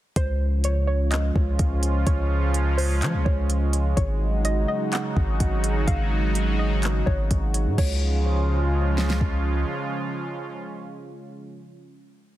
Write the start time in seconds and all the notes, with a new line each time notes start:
0.16 C#2 C#3 F3 G#3 C#4 F4 C5, kick, closed hi-hat
0.64 C#5, closed hi-hat
0.87 C#5
1.11 D#5, clap, closed hi-hat
1.36 C#2, kick
1.59 C#2, kick, closed hi-hat
1.83 closed hi-hat
2.06 C#2 C#5, kick, closed hi-hat
2.54 closed hi-hat
2.77 C5, open hi-hat
3.02 F3, clap, closed hi-hat
3.14 C#2
3.25 C#2 C#5, kick
3.50 closed hi-hat
3.73 closed hi-hat
3.97 G#1 C#3 F#3 D#4 F#4 C#5, kick, closed hi-hat
4.45 D#5, closed hi-hat
4.68 D#5
4.92 F#5, clap, closed hi-hat
5.17 G#1, kick
5.40 G#1, kick, closed hi-hat
5.64 closed hi-hat
5.87 G#1 F5, kick, closed hi-hat
6.35 closed hi-hat
6.59 D#5
6.83 clap, closed hi-hat
7.06 G#1 C#5, kick
7.31 G#1, kick, closed hi-hat
7.54 closed hi-hat
7.66 G#2
7.78 C#2 C#3 F3 G#3 C#4 F4 C#5, kick, crash
8.98 snare
9.10 snare
9.21 kick